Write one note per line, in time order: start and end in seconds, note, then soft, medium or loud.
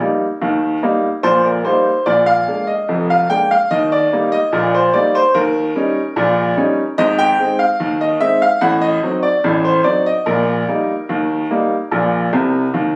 0.01 0.23 G3 soft
0.01 0.24 A#3 soft
0.01 0.24 D#4 soft
0.42 0.77 D#2 medium
0.42 0.77 D#3 medium
0.83 1.06 G3 soft
0.83 1.06 A#3 soft
0.83 1.06 D#4 soft
1.23 1.59 A#1 medium
1.23 1.59 A#2 medium
1.23 1.44 C5 medium
1.45 1.66 A#4 medium
1.65 1.88 G3 soft
1.65 1.88 A#3 soft
1.65 1.88 D#4 soft
1.65 2.04 C5 medium
2.06 2.42 A#1 medium
2.06 2.41 A#2 medium
2.06 2.27 D5 medium
2.26 2.66 F5 medium
2.47 2.70 G#3 soft
2.47 2.70 A#3 soft
2.47 2.71 D4 soft
2.67 3.07 D#5 medium
2.89 3.24 F1 medium
2.89 3.24 F2 medium
3.10 3.30 F5 medium
3.30 3.53 G#3 soft
3.30 3.53 A#3 soft
3.30 3.53 D4 soft
3.30 3.50 G5 medium
3.51 3.71 F5 medium
3.71 4.06 D#2 medium
3.71 4.06 D#3 medium
3.71 3.91 D#5 medium
3.92 4.25 D5 medium
4.13 4.35 G3 soft
4.13 4.35 A#3 medium
4.13 4.36 D#4 soft
4.32 4.65 D#5 medium
4.52 4.88 A#1 medium
4.52 4.87 A#2 medium
4.75 4.94 C5 medium
4.93 5.16 G3 soft
4.93 5.17 A#3 soft
4.93 5.17 D#4 soft
4.93 5.14 D5 medium
5.15 5.35 C5 medium
5.34 5.69 D#2 medium
5.34 5.69 D#3 medium
5.34 6.94 A#4 medium
5.76 5.98 G3 soft
5.76 5.98 C#4 soft
5.76 5.99 D#4 medium
6.16 6.51 A#1 medium
6.16 6.51 A#2 medium
6.57 6.79 G3 soft
6.57 6.80 C#4 soft
6.57 6.80 D#4 medium
6.98 7.33 G#1 medium
6.98 7.33 G#2 medium
6.98 7.19 D#5 loud
7.19 7.57 G5 loud
7.39 7.61 G#3 medium
7.39 7.62 C4 soft
7.39 7.62 D#4 medium
7.59 7.92 F5 medium
7.80 8.15 D#2 medium
7.80 8.15 D#3 medium
8.01 8.21 D#5 medium
8.21 8.43 G#3 soft
8.21 8.44 C4 soft
8.21 8.44 D#4 medium
8.21 8.41 E5 medium
8.42 8.62 F5 medium
8.61 8.96 A1 medium
8.61 8.96 A2 medium
8.61 8.82 F#5 medium
8.81 9.15 D#5 loud
9.03 9.25 F#3 medium
9.03 9.26 C4 medium
9.03 9.26 D#4 medium
9.23 9.56 D5 medium
9.44 9.79 A1 medium
9.44 9.79 A2 medium
9.65 9.85 C5 medium
9.84 10.07 F#3 soft
9.84 10.08 C4 soft
9.84 10.08 D#4 soft
9.84 10.05 D5 medium
10.06 10.27 D#5 medium
10.26 10.61 A#1 medium
10.26 10.61 A#2 medium
10.26 12.57 A#4 medium
10.68 10.91 G3 soft
10.68 10.91 A#3 soft
10.68 10.91 D#4 soft
11.09 11.44 D#2 medium
11.09 11.44 D#3 medium
11.51 11.73 G3 soft
11.51 11.73 A#3 soft
11.51 11.74 D#4 soft
11.91 12.27 A#1 medium
11.91 12.27 A#2 medium
12.33 12.64 C2 medium
12.33 12.64 C3 medium
12.74 12.96 D#2 medium
12.74 12.96 D#3 medium